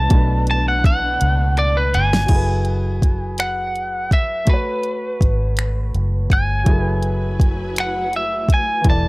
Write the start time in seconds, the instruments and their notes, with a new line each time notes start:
Already playing: string section E3, grand piano B4, lead electric guitar A5
0.09 fingered electric bass B1, grand piano B2 A3, string section B3 D4, kick, closed hi-hat
0.14 grand piano D4 B4
0.47 lead electric guitar A5, closed hi-hat
0.68 lead electric guitar F#5
0.84 lead electric guitar F#5, kick, closed hi-hat
1.21 fingered electric bass C#2, closed hi-hat
1.57 lead electric guitar D5, closed hi-hat
1.77 lead electric guitar B4
1.94 fingered electric bass G1, lead electric guitar G#5, closed hi-hat
2.13 snare
2.26 fingered electric bass F#1, grand piano F#3 E4, kick, closed hi-hat, crash
2.31 grand piano G#4 A4 B4
2.65 closed hi-hat
3.02 kick, closed hi-hat
3.38 lead electric guitar F#5, finger snap, closed hi-hat
3.76 closed hi-hat
4.11 lead electric guitar E5, kick, closed hi-hat
4.45 fingered electric bass A1, grand piano A3 F#4, kick, closed hi-hat
4.49 lead electric guitar B4, grand piano B4
4.53 grand piano C#5
4.83 closed hi-hat
5.21 fingered electric bass G#1, kick, closed hi-hat
5.57 finger snap, closed hi-hat
5.95 fingered electric bass F#1, closed hi-hat
6.30 fingered electric bass G1, lead electric guitar G#5, kick, closed hi-hat
6.64 fingered electric bass F#1, grand piano F#3 E4, string section F#3 A3 E4 B4 G#5, kick, closed hi-hat
6.68 grand piano G#4 A4
6.73 grand piano A#4
6.79 grand piano B4
7.03 closed hi-hat
7.40 kick, closed hi-hat
7.76 lead electric guitar F#5, finger snap, closed hi-hat
8.13 lead electric guitar E5, closed hi-hat
8.49 kick, closed hi-hat
8.54 lead electric guitar G#5
8.82 grand piano E3 E4, string section E3 B3 D4, kick, closed hi-hat
8.86 fingered electric bass E1, grand piano A4
8.90 grand piano D5, lead electric guitar A5